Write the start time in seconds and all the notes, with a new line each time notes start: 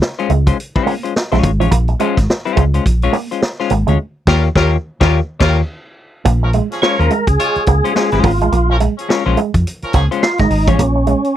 0.02 snare
0.19 G#3 C#4 F4 C5, closed hi-hat
0.30 C#2 G#3, closed hi-hat
0.47 G#3 C#4 F4 C5, kick, closed hi-hat
0.60 closed hi-hat
0.76 G#3 C#4 F4 C5, kick
0.86 A#3, open hi-hat
1.03 G#3 C#4 F4 C5, closed hi-hat
1.16 snare
1.32 A#1 G#3 C#4 F4 C#5, snare, closed hi-hat
1.43 G#1, muted clean electric guitar stroke, kick, closed hi-hat
1.60 A1 F3 G#3 C#4 F4 C#5, closed hi-hat
1.71 A#1 A#3, kick, closed hi-hat
1.88 muted clean electric guitar stroke, closed hi-hat
2.00 G#3 C#4 F4 C5, closed hi-hat
2.17 G#1, kick, snare, closed hi-hat
2.30 snare
2.45 G#3 C#4 F4 C5, closed hi-hat
2.57 C#2 G#3, kick, closed hi-hat
2.74 G#3 C#4 F4 C5, closed hi-hat
2.86 A#1, kick, closed hi-hat
3.02 G#3 C#4 F4 C#5, closed hi-hat
3.13 A#3, open hi-hat
3.31 G#3 C#4 F4 C5, closed hi-hat
3.42 muted clean electric guitar stroke, snare
3.60 G#3 C#4 F4 C5, snare
3.70 G#1 A#3, closed hi-hat
3.87 D2 G#3 C#4 F4 C#5, closed hi-hat
4.27 D#2 G3 A#3 F4 G4 A#4 C#5, kick, snare, crash
4.56 D#2 G3 A#3 F4 G4 A#4 C#5, kick, snare
5.00 D#2 G3 A#3 F4 G4 A#4 C#5, kick, snare
5.40 D#2 G3 A#3 F4 G4 A#4 C#5, kick, snare, crash
6.25 A#1 A#3, kick, closed hi-hat
6.42 F3 C#4 A#4, muted clean electric guitar stroke
6.53 G#3, closed hi-hat
6.71 F3 C#4 G#4, snare, closed hi-hat
6.82 F3 G#3 C#4 F4 A#4 C5 C#5, snare
6.99 D#2 G#3 C#4 F4 A#4 C5, closed hi-hat
7.10 G#3, closed hi-hat
7.27 C#2 G#4, kick, closed hi-hat
7.39 G#3 F4 C#5, closed hi-hat
7.55 muted fingered electric bass stroke, closed hi-hat
7.66 C#2 A#3, kick, closed hi-hat
7.84 G#3 C#4 F4 C5, closed hi-hat
7.95 G#3 C#4 F4 C5, muted clean electric guitar stroke, snare
8.12 G#1 G#3 C#4 F4 C5, snare, closed hi-hat
8.24 G#1 A#3 F4, kick, open hi-hat
8.41 A1 G#3, closed hi-hat
8.52 A#1 A#3, closed hi-hat
8.70 F3 C#4 A#4, muted clean electric guitar stroke
8.80 G#3, closed hi-hat
8.97 F3 C#4 G#4, closed hi-hat
9.08 F3 G#3 C#4 F4 A#4 C#5, snare
9.26 A#1 G#3 C#4 F4 C5
9.37 G#3, closed hi-hat
9.54 F2, kick, closed hi-hat
9.67 closed hi-hat
9.82 F3 C#4 A#4, muted fingered electric bass stroke, closed hi-hat
9.93 C#2 F3 A#3 C#4 G#4, kick, closed hi-hat
10.11 G#3 C#4 F4 C5, closed hi-hat
10.23 F4, snare
10.38 G#1 G#3 D#4, kick, snare, closed hi-hat
10.50 G#1, muted clean electric guitar stroke, open hi-hat
10.68 A1 F3 G#3 C#4 F4 C#5, kick, closed hi-hat
10.79 A#1 A#3, kick, closed hi-hat
10.96 muted clean electric guitar stroke
11.07 G#3, closed hi-hat
11.24 closed hi-hat